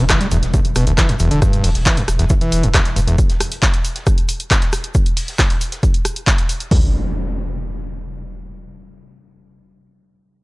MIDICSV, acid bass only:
0, 0, Header, 1, 2, 480
1, 0, Start_track
1, 0, Key_signature, 1, "minor"
1, 0, Tempo, 441176
1, 1545, Time_signature, 4, 2, 24, 8
1, 11353, End_track
2, 0, Start_track
2, 0, Title_t, "Acid bass"
2, 0, Program_c, 0, 38
2, 103, Note_on_c, 0, 52, 84
2, 204, Note_off_c, 0, 52, 0
2, 225, Note_on_c, 0, 55, 99
2, 291, Note_off_c, 0, 55, 0
2, 344, Note_on_c, 0, 40, 107
2, 411, Note_off_c, 0, 40, 0
2, 585, Note_on_c, 0, 38, 82
2, 652, Note_off_c, 0, 38, 0
2, 826, Note_on_c, 0, 47, 77
2, 925, Note_off_c, 0, 47, 0
2, 946, Note_on_c, 0, 38, 72
2, 1011, Note_off_c, 0, 38, 0
2, 1064, Note_on_c, 0, 52, 81
2, 1186, Note_on_c, 0, 40, 78
2, 1202, Note_off_c, 0, 52, 0
2, 1251, Note_off_c, 0, 40, 0
2, 1305, Note_on_c, 0, 40, 107
2, 1405, Note_off_c, 0, 40, 0
2, 1425, Note_on_c, 0, 50, 98
2, 1523, Note_off_c, 0, 50, 0
2, 1544, Note_on_c, 0, 43, 108
2, 1783, Note_on_c, 0, 40, 85
2, 1799, Note_off_c, 0, 43, 0
2, 1851, Note_off_c, 0, 40, 0
2, 2022, Note_on_c, 0, 52, 79
2, 2145, Note_on_c, 0, 40, 77
2, 2161, Note_off_c, 0, 52, 0
2, 2210, Note_off_c, 0, 40, 0
2, 2385, Note_on_c, 0, 40, 102
2, 2451, Note_off_c, 0, 40, 0
2, 2503, Note_on_c, 0, 52, 78
2, 2544, Note_off_c, 0, 52, 0
2, 2625, Note_on_c, 0, 52, 78
2, 2864, Note_on_c, 0, 40, 96
2, 2880, Note_off_c, 0, 52, 0
2, 2930, Note_off_c, 0, 40, 0
2, 2983, Note_on_c, 0, 40, 99
2, 3051, Note_off_c, 0, 40, 0
2, 3223, Note_on_c, 0, 43, 83
2, 3264, Note_off_c, 0, 43, 0
2, 3344, Note_on_c, 0, 40, 100
2, 3443, Note_off_c, 0, 40, 0
2, 11353, End_track
0, 0, End_of_file